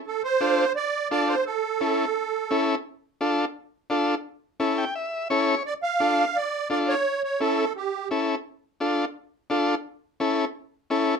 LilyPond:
<<
  \new Staff \with { instrumentName = "Accordion" } { \time 4/4 \key d \minor \tempo 4 = 171 a'8 c''4. d''4 d''8 c''8 | a'2.~ a'8 r8 | r1 | r1 |
d''8 f''4. d''4 d''8 cis''8~ | cis''8 cis''8 a'4 g'4 r4 | r1 | r1 | }
  \new Staff \with { instrumentName = "Transistor combo organ" } { \time 4/4 \key d \minor << { r1 | r1 | r1 | r4. g''8 e''4 cis''4 |
r1 | r1 | r1 | r1 | } \\ { r4 <d' f' a'>8 r4. <d' f' a'>8 r8 | r4 <cis' e' a'>8 r4. <cis' e' a'>8 r8 | r4 <d' f' a'>8 r4. <d' f' a'>8 r8 | r4 <cis' e' a'>8 r4. <cis' e' a'>8 r8 |
r4 <d' f' a'>8 r4. <d' f' a'>8 r8 | r4 <cis' e' a'>8 r4. <cis' e' a'>8 r8 | r4 <d' f' a'>8 r4. <d' f' a'>8 r8 | r4 <cis' e' a'>8 r4. <cis' e' a'>8 r8 | } >> }
>>